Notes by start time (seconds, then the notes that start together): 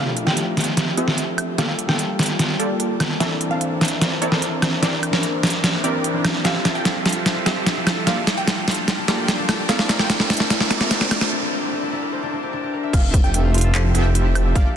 Already playing: F3 A3 C4 D4 E4 F4 G4 A4 A#4 C5 D5 E5 F5, riser
0.17 closed hi-hat
0.25 F3 A3 E5 G5, snare
0.29 G4
0.37 closed hi-hat
0.57 snare, closed hi-hat
0.60 closed hi-hat
0.64 closed hi-hat
0.77 snare, closed hi-hat
0.97 C4 F4 G4 A4 E5, closed hi-hat
1.08 snare
1.18 closed hi-hat
1.38 closed hi-hat, high woodblock
1.58 G3 A#3 F4 G4 A4 D5 F5 A5, snare, closed hi-hat
1.79 closed hi-hat
1.87 G3 A#3 F4 G5, snare
1.91 A4
1.99 closed hi-hat
2.19 snare, closed hi-hat
2.23 closed hi-hat
2.26 closed hi-hat
2.39 snare, closed hi-hat
2.59 A#3 F4 G4 A4 D5, closed hi-hat
2.80 closed hi-hat
3.00 snare, closed hi-hat, high woodblock
3.20 E3 C4 D4 E4 A4 A#4 C5 D5 E5, snare, closed hi-hat
3.41 closed hi-hat
3.49 E3 C4 D4 F5 A5
3.61 closed hi-hat
3.81 snare, closed hi-hat
3.85 closed hi-hat
3.88 closed hi-hat
4.01 snare, closed hi-hat
4.22 C4 E4 A4 A#4 D5, closed hi-hat
4.32 snare
4.42 closed hi-hat
4.62 snare, closed hi-hat, high woodblock
4.82 E3 A#3 C4 D4 E4 G4 A#4 D5, snare, closed hi-hat
5.03 closed hi-hat, high woodblock
5.11 E3 C4 D4 A#4, snare
5.15 A#4
5.23 closed hi-hat
5.43 snare, closed hi-hat
5.47 closed hi-hat
5.50 closed hi-hat
5.64 snare, closed hi-hat
5.83 E3 C4 D4 E4 G4 A#4 D5, closed hi-hat
6.04 closed hi-hat
6.13 E3 C4 D4 C5
6.25 snare, closed hi-hat, high woodblock
6.44 F3 G3 C4 E4 F4 G4 A4 E5 F5 A5, snare, closed hi-hat
6.55 E4
6.65 A4, snare, closed hi-hat
6.75 G4 G5
6.85 E4, snare, closed hi-hat
6.95 F4
7.05 F4, snare, closed hi-hat
7.09 closed hi-hat
7.12 A4, closed hi-hat
7.26 C5, snare, closed hi-hat
7.36 E4
7.46 C4 F4 G4 A4 E5, snare, closed hi-hat
7.56 G4
7.66 E4, snare, closed hi-hat
7.76 E4
7.86 A4, snare, closed hi-hat, high woodblock
7.97 E5
8.07 A#3 D4 F4 G4 A4 D5 F5, snare, closed hi-hat
8.17 D4
8.27 A4, snare, closed hi-hat
8.37 G4 G5
8.47 D4, snare, closed hi-hat
8.58 F4
8.68 F4, snare, closed hi-hat
8.71 closed hi-hat
8.74 A4, closed hi-hat
8.88 A#4, snare, closed hi-hat
8.98 D4
9.08 A#3 F4 G4 A4 D5, snare, closed hi-hat
9.18 G4
9.28 D4, snare, closed hi-hat
9.39 D4
9.49 A4, snare, closed hi-hat, high woodblock
9.59 D5
9.69 C4 D4 E4 A4 A#4 C5 D5 E5 F5, snare, closed hi-hat
9.79 D4, snare
9.89 A4, snare, closed hi-hat
9.99 F4 G5, snare
10.10 D4, snare, closed hi-hat
10.20 E4, snare
10.30 E4, snare, closed hi-hat
10.33 closed hi-hat
10.37 A4, snare, closed hi-hat
10.50 A#4, snare, closed hi-hat
10.60 D4, snare
10.70 C4 E4 A4 A#4 D5, snare, closed hi-hat
10.80 F4, snare
10.91 D4, snare, closed hi-hat
11.01 D4, snare
11.11 A4, snare, closed hi-hat, high woodblock
11.21 C5, snare
11.31 D4
11.42 D4
11.52 A#4
11.62 G4
11.72 D4
11.82 E4
11.92 E4
12.02 A#4
12.12 C5
12.23 D4
12.33 D4
12.43 G4
12.53 D4
12.63 G4
12.73 A#4
12.83 E5
12.93 F1 F3 C4 F4 G4 A4 E5 F5, kick, closed hi-hat, crash
13.04 E4
13.14 A4, kick, closed hi-hat
13.24 G4 G5
13.34 E4, closed hi-hat
13.44 F4
13.54 F4, closed hi-hat
13.58 closed hi-hat
13.61 A4, closed hi-hat
13.74 C5, clap, closed hi-hat
13.84 E4
13.95 F1 C4 F4 G4 A4 E5, closed hi-hat
14.05 G4
14.15 E4, closed hi-hat
14.25 E4
14.35 A4, closed hi-hat, high woodblock
14.45 E5
14.55 G1 A#3 D4 F4 G4 A4 D5 F5, kick, closed hi-hat
14.65 D4